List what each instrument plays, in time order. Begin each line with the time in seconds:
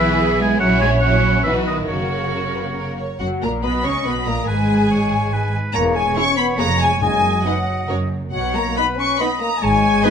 Already playing: double bass section B1, cello section E3, violin section B3 E4 G#4, viola section B4, oboe E5
0.21 viola section G#4
0.42 cello section G#3, oboe G#5
0.60 double bass section A#1, cello section F#3, violin section C#4 E4 F#4, viola section C#5, oboe F#5
0.82 cello section G#3, oboe G#5
1.01 cello section F#3, violin section C#4 E4 F#4, oboe F#5
1.44 double bass section B1, cello section E3, violin section B3 D#4 F#4, viola section B4, oboe E5
1.66 cello section D#3, violin section E4, oboe D#5
1.88 double bass section F#1, cello section C#3, violin section A#3 F#4, viola section A#4, oboe C#5
2.33 violin section F#4
2.54 violin section B4
2.77 violin section A#4
2.97 violin section C#5
3.20 double bass section F#1, cello section F#2, french horn section F#3, viola section F#3, violin section F#4 F#5, flute F#5
3.41 double bass section A#1, cello section A#2, french horn section A#3, viola section A#3, violin section A#4 A#5, flute A#5
3.62 double bass section B1, cello section B2, french horn section B3, viola section B3, violin section B4 B5, oboe D#5, flute B5
3.84 double bass section C#2, cello section C#3, french horn section C#4, viola section C#4, violin section C#5 C#6, flute C#6
4.04 double bass section B1, cello section B2, french horn section B3, viola section B3, violin section B4 B5, flute B5
4.25 double bass section A#1, cello section A#2, viola section A#3, french horn section A#3, violin section A#4 A#5, flute A#5
4.46 double bass section G#1, cello section G#2, viola section G#3, french horn section G#3, violin section G#4 G#5, oboe B4, flute G#5
4.91 oboe C#5
5.33 oboe B4
5.74 double bass section E1, cello section E2, french horn section A#3, oboe C#5, violin section A#5, flute A#5
5.95 french horn section G#3, violin section G#5, flute G#5
6.16 viola section C#4 E4, french horn section C#4, violin section G#4 C#5 C#6, flute C#6
6.37 french horn section B3, violin section B5, flute B5
6.57 double bass section F1, cello section F2, french horn section A#3, viola section B3 G#4, violin section G#4 C#5 A#5, flute A#5
6.80 french horn section G#3, flute G#5, violin section G#5
7.01 double bass section F#1, timpani F#2, cello section F#2, french horn section G#3, oboe D#5, flute G#5, violin section G#5
7.44 french horn section F#3, viola section B3 D#4, violin section B4 D#5 F#5, flute F#5
7.88 double bass section F#1, cello section F#2, viola section C#4 F#4, violin section A#4 C#5
8.32 double bass section B1, cello section B2, french horn section F#3, oboe C#5, violin section F#5, flute F#5
8.55 french horn section A#3, flute A#5, violin section A#5
8.76 viola section B3 D#4, french horn section B3, violin section B4 D#5 B5, oboe B4, flute B5
8.97 french horn section C#4, flute C#6, violin section C#6
9.18 french horn section B3, viola section B3 D#4, violin section B4 D#5 B5, oboe D#5, flute B5
9.40 french horn section A#3, violin section A#5, flute A#5
9.62 double bass section G#1, cello section G#2, french horn section G#3, oboe C#5, flute G#5, violin section G#5
10.02 viola section B3 D#4, violin section B4 D#5, oboe B4